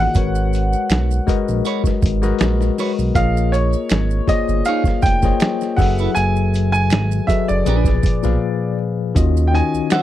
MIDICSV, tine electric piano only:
0, 0, Header, 1, 2, 480
1, 0, Start_track
1, 0, Tempo, 750000
1, 97, Time_signature, 4, 2, 24, 8
1, 6415, End_track
2, 0, Start_track
2, 0, Title_t, "Tine electric piano"
2, 0, Program_c, 0, 4
2, 0, Control_c, 0, 64, 127
2, 0, Note_on_c, 0, 51, 73
2, 0, Note_on_c, 0, 58, 67
2, 0, Note_on_c, 0, 65, 61
2, 0, Note_on_c, 0, 66, 64
2, 0, Note_on_c, 0, 68, 63
2, 0, Note_on_c, 0, 73, 65
2, 0, Note_on_c, 0, 74, 64
2, 0, Note_on_c, 0, 75, 76
2, 93, Note_on_c, 0, 56, 70
2, 95, Note_off_c, 0, 66, 0
2, 95, Note_on_c, 0, 66, 64
2, 100, Note_on_c, 0, 70, 64
2, 102, Note_on_c, 0, 71, 65
2, 105, Control_c, 0, 64, 0
2, 106, Note_off_c, 0, 74, 0
2, 107, Note_off_c, 0, 73, 0
2, 107, Note_on_c, 0, 73, 75
2, 108, Note_off_c, 0, 68, 0
2, 109, Note_off_c, 0, 51, 0
2, 110, Note_off_c, 0, 58, 0
2, 110, Note_off_c, 0, 75, 0
2, 111, Note_off_c, 0, 65, 0
2, 215, Control_c, 0, 64, 127
2, 666, Note_off_c, 0, 56, 0
2, 667, Note_off_c, 0, 66, 0
2, 669, Note_off_c, 0, 70, 0
2, 671, Note_off_c, 0, 71, 0
2, 673, Note_off_c, 0, 73, 0
2, 813, Note_on_c, 0, 56, 88
2, 816, Note_on_c, 0, 66, 81
2, 820, Note_on_c, 0, 70, 80
2, 822, Note_on_c, 0, 71, 76
2, 827, Note_on_c, 0, 75, 94
2, 1286, Note_off_c, 0, 56, 0
2, 1288, Note_off_c, 0, 66, 0
2, 1289, Note_off_c, 0, 70, 0
2, 1290, Note_off_c, 0, 71, 0
2, 1293, Note_off_c, 0, 75, 0
2, 1420, Note_on_c, 0, 56, 84
2, 1425, Note_on_c, 0, 66, 82
2, 1427, Note_on_c, 0, 70, 81
2, 1430, Note_on_c, 0, 71, 80
2, 1432, Note_on_c, 0, 75, 98
2, 1893, Note_off_c, 0, 56, 0
2, 1895, Note_off_c, 0, 66, 0
2, 1896, Note_off_c, 0, 70, 0
2, 1898, Note_off_c, 0, 71, 0
2, 1899, Note_off_c, 0, 75, 0
2, 2013, Note_on_c, 0, 58, 74
2, 2016, Note_on_c, 0, 65, 66
2, 2018, Note_on_c, 0, 68, 62
2, 2020, Note_on_c, 0, 70, 59
2, 2024, Control_c, 0, 64, 0
2, 2024, Note_on_c, 0, 73, 61
2, 2028, Note_on_c, 0, 75, 83
2, 2140, Control_c, 0, 64, 127
2, 2586, Note_off_c, 0, 58, 0
2, 2588, Note_off_c, 0, 65, 0
2, 2589, Note_off_c, 0, 68, 0
2, 2590, Note_off_c, 0, 70, 0
2, 2592, Note_off_c, 0, 73, 0
2, 2594, Note_off_c, 0, 75, 0
2, 2733, Note_on_c, 0, 58, 74
2, 2734, Note_on_c, 0, 65, 66
2, 2738, Note_on_c, 0, 68, 69
2, 2739, Note_on_c, 0, 72, 63
2, 2745, Note_on_c, 0, 73, 64
2, 2746, Note_on_c, 0, 74, 65
2, 2787, Note_off_c, 0, 74, 0
2, 2788, Note_on_c, 0, 75, 78
2, 3206, Note_off_c, 0, 58, 0
2, 3206, Note_off_c, 0, 65, 0
2, 3208, Note_off_c, 0, 68, 0
2, 3209, Note_off_c, 0, 72, 0
2, 3212, Note_off_c, 0, 73, 0
2, 3233, Note_off_c, 0, 75, 0
2, 3347, Note_on_c, 0, 58, 74
2, 3350, Note_on_c, 0, 65, 63
2, 3352, Note_on_c, 0, 68, 68
2, 3354, Note_on_c, 0, 72, 67
2, 3358, Note_on_c, 0, 73, 65
2, 3362, Note_on_c, 0, 75, 74
2, 3693, Note_off_c, 0, 68, 0
2, 3695, Note_on_c, 0, 54, 80
2, 3697, Note_off_c, 0, 58, 0
2, 3697, Note_on_c, 0, 66, 70
2, 3698, Note_off_c, 0, 65, 0
2, 3701, Note_off_c, 0, 72, 0
2, 3701, Note_on_c, 0, 68, 68
2, 3703, Note_off_c, 0, 73, 0
2, 3704, Note_off_c, 0, 75, 0
2, 3704, Control_c, 0, 64, 0
2, 3704, Note_on_c, 0, 69, 70
2, 3708, Note_on_c, 0, 71, 76
2, 3708, Note_on_c, 0, 76, 89
2, 3817, Control_c, 0, 64, 127
2, 4468, Note_off_c, 0, 54, 0
2, 4469, Note_off_c, 0, 66, 0
2, 4471, Note_off_c, 0, 68, 0
2, 4472, Note_off_c, 0, 69, 0
2, 4474, Note_off_c, 0, 71, 0
2, 4475, Note_off_c, 0, 76, 0
2, 4656, Note_on_c, 0, 54, 73
2, 4660, Note_on_c, 0, 66, 67
2, 4663, Note_on_c, 0, 68, 69
2, 4666, Note_on_c, 0, 69, 66
2, 4670, Note_on_c, 0, 71, 65
2, 4670, Note_on_c, 0, 75, 78
2, 4895, Note_off_c, 0, 68, 0
2, 4896, Note_off_c, 0, 54, 0
2, 4896, Note_on_c, 0, 46, 73
2, 4898, Note_off_c, 0, 66, 0
2, 4901, Note_off_c, 0, 69, 0
2, 4901, Note_off_c, 0, 71, 0
2, 4902, Note_on_c, 0, 68, 69
2, 4903, Note_off_c, 0, 75, 0
2, 4903, Note_on_c, 0, 53, 71
2, 4906, Control_c, 0, 64, 0
2, 4909, Note_on_c, 0, 71, 73
2, 4912, Note_on_c, 0, 74, 81
2, 5002, Control_c, 0, 64, 127
2, 5188, Note_off_c, 0, 46, 0
2, 5192, Note_off_c, 0, 53, 0
2, 5192, Note_off_c, 0, 68, 0
2, 5195, Note_off_c, 0, 71, 0
2, 5196, Note_off_c, 0, 74, 0
2, 5264, Note_on_c, 0, 46, 73
2, 5270, Note_on_c, 0, 53, 63
2, 5271, Note_on_c, 0, 68, 64
2, 5275, Note_on_c, 0, 71, 68
2, 5278, Note_on_c, 0, 77, 77
2, 5735, Note_off_c, 0, 46, 0
2, 5738, Note_off_c, 0, 53, 0
2, 5738, Note_off_c, 0, 68, 0
2, 5740, Note_off_c, 0, 71, 0
2, 5742, Note_off_c, 0, 77, 0
2, 5853, Note_on_c, 0, 51, 80
2, 5858, Note_on_c, 0, 61, 73
2, 5861, Note_on_c, 0, 65, 74
2, 5864, Note_on_c, 0, 66, 72
2, 5866, Control_c, 0, 64, 0
2, 5868, Note_on_c, 0, 75, 83
2, 5965, Control_c, 0, 64, 127
2, 6047, Note_off_c, 0, 51, 0
2, 6050, Note_off_c, 0, 61, 0
2, 6051, Note_off_c, 0, 65, 0
2, 6053, Note_off_c, 0, 66, 0
2, 6055, Note_off_c, 0, 75, 0
2, 6098, Note_on_c, 0, 51, 69
2, 6100, Note_on_c, 0, 61, 66
2, 6103, Note_on_c, 0, 63, 64
2, 6108, Note_on_c, 0, 66, 64
2, 6111, Note_on_c, 0, 75, 80
2, 6415, Note_off_c, 0, 51, 0
2, 6415, Note_off_c, 0, 61, 0
2, 6415, Note_off_c, 0, 63, 0
2, 6415, Note_off_c, 0, 66, 0
2, 6415, Note_off_c, 0, 75, 0
2, 6415, End_track
0, 0, End_of_file